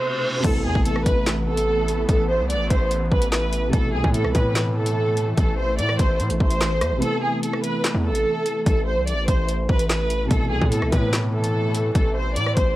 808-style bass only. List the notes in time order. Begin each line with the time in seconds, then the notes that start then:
0.44 A1
0.65 E2
0.75 A1
1.06 A1
2.09 A1
2.40 C2
2.55 A1
2.70 A1
3.12 A1
3.73 A1
3.94 C2
4.04 A2
4.25 C2
4.35 A2
5.38 A1
5.79 A2
5.99 A1
6.20 A2
6.30 A1
6.40 A1
6.81 E2
6.92 A1
7.94 E2
8.10 A1
8.66 A1
8.97 C2
9.13 A1
9.28 A1
9.69 A1
10.31 A1
10.51 C2
10.62 A2
10.82 C2
10.92 A2
11.95 A1
12.36 A2
12.57 A1